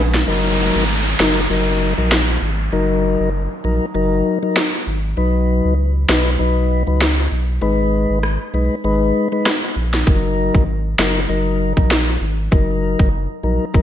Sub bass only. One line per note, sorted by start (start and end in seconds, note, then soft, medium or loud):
0.00 0.25 A#1 medium
0.27 0.71 F#1 loud
0.75 1.15 G#1 medium
1.19 1.47 F#1 medium
1.50 1.94 F#1 loud
1.98 2.38 A#1 loud
2.42 2.70 G#1 medium
2.72 3.16 F#1 loud
3.20 3.48 F#1 medium
3.64 3.80 A#1 loud
3.95 4.23 F#1 loud
4.87 5.15 G#1 medium
5.17 5.61 B1 loud
5.65 6.05 C#2 loud
6.09 6.37 B1 loud
6.40 6.84 B1 loud
6.88 7.28 C#2 medium
7.32 7.59 B1 medium
7.62 8.06 G#1 loud
8.10 8.38 G#1 loud
8.54 8.69 B1 loud
8.84 9.12 G#1 loud
9.76 10.04 A#1 medium
10.07 10.51 F#1 loud
10.54 10.95 G#1 medium
10.99 11.27 F#1 medium
11.29 11.73 F#1 loud
11.77 12.17 A#1 medium
12.21 12.49 G#1 medium
12.52 12.96 F#1 loud
13.00 13.27 F#1 loud
13.44 13.59 A#1 loud
13.74 13.82 F#1 loud